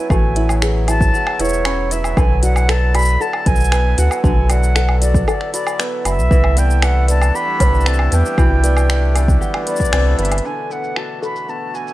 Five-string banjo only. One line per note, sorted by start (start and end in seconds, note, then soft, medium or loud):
0.00 1.64 C#4 medium
0.00 0.35 E4 medium
0.10 2.17 A3 medium
0.36 0.86 E4 medium
0.62 1.13 G#4 medium
0.88 1.38 E4 medium
1.14 2.22 G#4 medium
1.40 1.90 E4 medium
1.65 2.22 C#4 medium
1.91 2.22 E4 medium
2.17 4.23 D3 medium
2.43 2.93 F#4 medium
2.69 3.19 A4 medium
2.94 3.45 F#4 medium
3.20 4.75 A4 medium
3.46 3.97 F#4 medium
3.72 5.78 B3 medium
3.98 4.49 F#4 medium
4.24 6.30 D3 medium
4.50 5.00 F#4 medium
4.76 5.26 A4 medium
5.02 5.52 F#4 medium
5.28 6.36 A4 medium
5.53 6.04 F#4 medium
5.79 6.57 B3 medium
6.05 6.36 F#4 medium
6.31 8.37 E3 medium
6.57 7.08 B3 medium
6.83 7.33 G4 medium
7.08 7.60 B3 medium
7.34 8.88 G4 medium
7.60 8.12 B3 medium
7.86 9.92 C4 medium
8.12 8.63 B3 medium
8.38 10.44 E3 medium
8.64 9.15 B3 medium
8.89 9.40 G4 medium
9.15 9.66 B3 medium
9.41 10.50 G4 medium
9.67 10.18 B3 medium
9.93 10.50 C4 medium
10.19 10.71 B3 medium
10.45 11.93 D3 medium
10.45 11.22 A4 medium
10.71 11.47 B3 medium
10.96 11.73 F#4 medium
11.22 11.93 A4 medium
11.48 11.93 B3 soft
11.74 11.93 F#4 soft